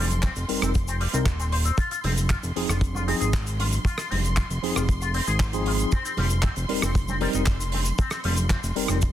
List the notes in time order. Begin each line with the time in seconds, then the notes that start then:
Already playing: F1 C6
0.10 closed hi-hat, shaker
0.23 C4, kick, clap, closed hi-hat, shaker
0.36 F1, closed hi-hat, shaker
0.48 F1 G3 C4 D#4 A#4, open hi-hat
0.62 F1 C4, cross-stick, closed hi-hat, shaker
0.75 kick, closed hi-hat, shaker
0.88 C4, closed hi-hat, shaker
1.01 G3, open hi-hat
1.13 C2 G3 C4 D#4 A#4, closed hi-hat, shaker
1.26 D#1, kick, clap, closed hi-hat, shaker
1.39 C4, closed hi-hat, shaker
1.52 C5, open hi-hat
1.65 C4, closed hi-hat, shaker
1.78 F4 C6, kick, closed hi-hat, shaker
1.91 F4, closed hi-hat, shaker
2.04 F1 C4, open hi-hat, high conga, low conga
2.17 closed hi-hat, shaker
2.30 F4, kick, clap, closed hi-hat, shaker
2.43 F1, closed hi-hat, shaker
2.56 F1 F3 C4 D#4 G#4, open hi-hat
2.69 F1 F4, cross-stick, closed hi-hat, high conga, shaker
2.81 kick, closed hi-hat, shaker
2.95 F4, high conga, shaker
3.07 F3 C4 D#4 G#4, open hi-hat
3.21 G#1 G#4, closed hi-hat, shaker
3.33 kick, clap, closed hi-hat, shaker
3.47 closed hi-hat, shaker
3.59 F4, open hi-hat, high conga
3.73 closed hi-hat, shaker
3.85 F4, kick, closed hi-hat, shaker
3.98 F4, cross-stick, closed hi-hat, shaker
4.11 F1 C4, open hi-hat, high conga, low conga
4.25 closed hi-hat, shaker
4.37 F4, kick, clap, closed hi-hat, shaker
4.50 F1, closed hi-hat, shaker
4.63 F1 F3 C4 D#4 G#4, open hi-hat
4.76 F1 F4, cross-stick, closed hi-hat, shaker
4.89 kick, closed hi-hat, shaker
5.02 F4, closed hi-hat, shaker
5.14 C4, open hi-hat
5.27 G#1 G#4, closed hi-hat, shaker
5.40 kick, clap, closed hi-hat, shaker
5.53 F3 C4 D#4 G#4, closed hi-hat, shaker
5.66 F4, open hi-hat
5.79 closed hi-hat, shaker
5.92 C4, kick, closed hi-hat, shaker
6.05 C4, closed hi-hat, shaker
6.17 F1 G3, open hi-hat, high conga, low conga
6.30 closed hi-hat, shaker
6.43 C4, kick, clap, closed hi-hat, shaker
6.56 F1, closed hi-hat, shaker
6.69 F1 G3 C4 D#4 A#4, open hi-hat
6.82 F1 C4, cross-stick, closed hi-hat, high conga, shaker
6.95 kick, closed hi-hat, shaker
7.08 C4, high conga, shaker
7.21 G3 C4 D#4 A#4, open hi-hat
7.33 F1 D#4, closed hi-hat, shaker
7.46 kick, clap, closed hi-hat, shaker
7.60 closed hi-hat, shaker
7.72 C4, open hi-hat, high conga
7.86 closed hi-hat, shaker
7.98 C4, kick, closed hi-hat, shaker
8.10 C4, cross-stick, closed hi-hat, shaker
8.24 F1 G3, open hi-hat, high conga, low conga
8.37 closed hi-hat, shaker
8.49 C4, kick, clap, closed hi-hat, shaker
8.64 F1, closed hi-hat, shaker
8.76 F1 G3 C4 D#4 A#4, open hi-hat
8.88 F1 C4, cross-stick, closed hi-hat, high conga, shaker
9.02 kick, closed hi-hat, shaker